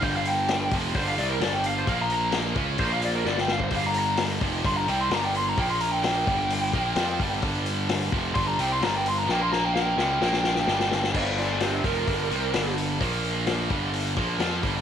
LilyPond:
<<
  \new Staff \with { instrumentName = "Lead electric guitar" } { \time 4/4 \key g \minor \tempo 4 = 129 g''16 f''16 g''4 r8 c''16 f''16 d''16 bes'16 d''16 g''16 f''16 c''16 | f''16 bes''16 bes''8 r4 c''16 f''16 d''16 bes'16 d''16 g''16 f''16 c''16 | f''16 bes''16 bes''8 r4 c'''16 bes''16 g''16 c'''16 bes''16 g''16 c'''16 bes''16 | g''16 c'''16 bes''16 g''16 g''2. |
r2 c'''16 bes''16 g''16 c'''16 bes''16 g''16 c'''16 bes''16 | g''16 c'''16 bes''16 g''16 g''2. | <d'' f''>8 <f' d''>8 <g' c''>8 bes'2 r8 | r1 | }
  \new Staff \with { instrumentName = "Distorted electric guitar" } { \clef bass \time 4/4 \key g \minor <g, d g>4. <f, c f>8 <g, d g>8 <c g c'>8 <g, d g>4 | <bes, f bes>4. <cis gis cis'>8 <bes, f bes>4 <g, d g>4 | <g, d g>4. <f, c f>8 <g, d g>8 <c g c'>8 <g, d g>4 | <bes, f bes>4. <g, d g>4 <bes, f bes>8 <f c' f'>8 <g, d g>8 |
<g, d g>4. <f, c f>8 <g, d g>8 <c g c'>8 <g, d g>4 | <bes, f bes>4. <cis gis cis'>8 <bes, f bes>4 <g, d g>4 | <g, d g>4. <f, c f>8 <g, d g>8 <c g c'>8 <g, d g>4 | <bes, f bes>4. <g, d g>4 <bes, f bes>8 <f c' f'>8 <g, d g>8 | }
  \new Staff \with { instrumentName = "Picked electric bass" } { \clef bass \time 4/4 \key g \minor g,,4. f,,8 g,,8 c,8 g,,4 | bes,,4. cis,8 bes,,4 g,,4 | g,,4. f,,8 g,,8 c,8 g,,4 | bes,,4. g,,4 bes,,8 f,8 g,,8 |
g,,4. f,,8 g,,8 c,8 g,,4 | bes,,4. cis,8 bes,,4 g,,4 | g,,4. f,,8 g,,8 c,8 g,,4 | bes,,4. g,,4 bes,,8 f,8 g,,8 | }
  \new DrumStaff \with { instrumentName = "Drums" } \drummode { \time 4/4 <hho bd>8 hho8 <hho sn>8 <hho bd>8 <hho bd>8 hho8 <hho sn>8 hho8 | <hho bd>8 hho8 <hho sn>8 <hho bd>8 <hho bd>8 hho8 sn16 sn16 sn16 bd16 | <hho bd>8 hho8 <hho sn>8 <hho bd>8 <hho bd>8 hho8 <hho sn>8 hho8 | <hho bd>8 hho8 <hho sn>8 <hho bd>8 hho8 <hho bd>8 <hho sn>8 <hho bd>8 |
<hho bd>8 hho8 <hho sn>8 <hho bd>8 <hho bd>8 hho8 <hho sn>8 hho8 | sn8 sn8 sn8 sn8 sn16 sn16 sn16 sn16 sn16 sn16 sn16 sn16 | <cymc bd>8 hho8 <hho sn>8 <hho bd>8 <hho bd>8 hho8 <hho sn>8 hho8 | <hho bd>8 hho8 <hho sn>8 <hho bd>8 hho8 <hho bd>8 <hho sn>8 <hho bd>8 | }
>>